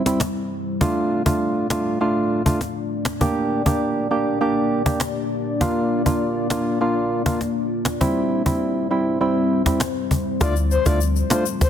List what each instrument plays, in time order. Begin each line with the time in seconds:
Already playing: ambient pad G3 C4 E4 C5
0.06 synth stab G3 C4 E4, cajon slap
0.20 cajon slap
0.81 synth stab A3 D4 F4, ambient pad A3 D4 F4 D5, cajon bass
1.26 synth stab A3 D4 F4, cajon bass
1.70 synth stab A3 D4 F4, cajon slap
2.01 synth stab A3 D4 F4
2.46 synth stab A3 D4 F4, cajon bass
2.61 cajon slap
3.05 cajon slap
3.21 synth stab A#3 D4 G4, ambient pad A#3 G4, cajon bass
3.66 synth stab A#3 D4 G4, cajon bass
4.11 synth stab A#3 D4 G4
4.41 synth stab A#3 D4 G4
4.86 synth stab A#3 D4 G4, cajon bass
5.00 cajon slap
5.61 synth stab A#3 D4 F4, ambient pad F4, cajon bass
6.06 synth stab A#3 D4 F4, cajon bass
6.50 synth stab A#3 D4 F4, cajon slap
6.81 synth stab A#3 D4 F4
7.26 synth stab A#3 D4 F4, cajon bass
7.41 cajon slap
7.85 cajon slap
8.01 synth stab G3 C4 E4, ambient pad G3 C4 E4 C5, cajon bass
8.46 synth stab G3 C4 E4, cajon bass
8.91 synth stab G3 C4 E4
9.21 synth stab G3 C4 E4
9.66 synth stab G3 C4 E4, cajon bass, cajon slap
9.80 cajon slap
10.11 cajon bass
10.41 fm bass D2, ambient pad D3 F3 A3 F4, synth stab A3 D4 F4, soft synth lead D5, cajon bass, shaker
10.56 cajon slap, shaker
10.71 soft synth lead C5, cajon slap, shaker
10.86 fm bass D2, synth stab A3 D4 F4, soft synth lead D5, cajon bass, shaker
11.01 cajon slap, shaker
11.16 cajon slap, shaker
11.30 synth stab A3 D4 F4, soft synth lead C5, cajon slap, shaker
11.46 shaker
11.61 fm bass D2, soft synth lead C5, cajon bass, shaker